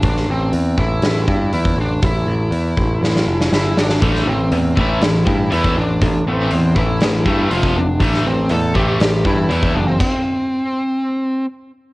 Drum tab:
CC |----------------|----------------|----------------|----------------|
HH |o---o---o---o---|o---o-----------|o---o---o---o---|o---o---o---o---|
SD |-o------o-------|--------oo-oo-oo|-o------o-------|--------o-------|
BD |o-----o---o--o--|o-----o---------|o-----o---o--o--|o-----o---o--o--|

CC |----------------|x---------------|
HH |o---o---o---o---|----------------|
SD |-o------o-------|----------------|
BD |o-----o---o--o--|o---------------|